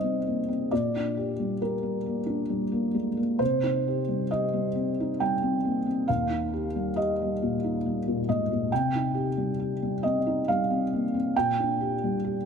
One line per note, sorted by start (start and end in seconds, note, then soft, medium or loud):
0.00 0.66 C3 soft
0.00 0.74 G3 soft
0.00 0.04 C4 soft
0.00 0.40 C4 soft
0.00 0.74 D#4 soft
0.00 0.74 G4 soft
0.00 0.73 C5 medium
0.00 0.71 D#5 medium
0.27 0.49 A#3 soft
0.48 0.71 C4 soft
0.71 3.37 A#2 soft
0.71 1.61 D5 medium
0.96 1.31 D4 soft
1.17 1.52 G4 soft
1.40 1.75 G3 soft
1.62 1.97 G4 soft
1.62 2.96 A#4 soft
1.83 2.19 G3 soft
2.06 2.42 A#3 soft
2.26 2.63 D4 soft
2.50 2.86 G3 soft
2.72 3.08 A#3 soft
2.95 3.17 G#3 soft
3.17 3.40 A#3 soft
3.39 6.03 C3 soft
3.39 4.30 C5 medium
3.63 3.99 D#4 soft
3.88 4.23 G4 soft
4.08 4.44 G3 soft
4.31 4.67 G4 soft
4.31 5.20 D#5 medium
4.53 4.89 G3 soft
4.75 5.11 C4 soft
5.00 5.34 D#4 soft
5.20 5.55 G3 soft
5.20 6.08 G5 medium
5.42 5.77 C4 soft
5.65 5.86 A#3 soft
5.86 6.08 C4 soft
6.08 8.68 D#2 soft
6.08 6.97 F5 medium
6.30 6.66 D#4 soft
6.53 6.88 G4 soft
6.76 7.10 G3 soft
6.96 7.32 G4 soft
6.96 8.27 D#5 medium
7.21 7.55 G3 soft
7.42 7.76 A#2 soft
7.64 7.97 D#4 soft
7.86 8.20 G3 soft
8.08 8.41 A#2 soft
8.29 8.50 G#2 soft
8.29 8.72 D#5 medium
8.52 8.72 A#2 soft
8.72 11.31 C3 soft
8.72 10.03 G5 medium
8.95 9.29 D#4 soft
9.14 9.49 G4 soft
9.37 9.72 G3 soft
9.59 9.94 G4 soft
9.82 10.16 G3 soft
10.03 10.38 C4 soft
10.03 10.46 D#5 medium
10.26 10.60 D#4 soft
10.48 10.83 G3 soft
10.48 11.35 F5 medium
10.71 11.05 C4 soft
10.93 11.14 A#3 soft
11.14 11.35 C4 soft
11.36 12.45 A#2 soft
11.36 12.45 G5 medium
11.60 11.93 D4 soft
11.81 12.15 G4 soft
12.04 12.37 G3 soft
12.24 12.45 G4 soft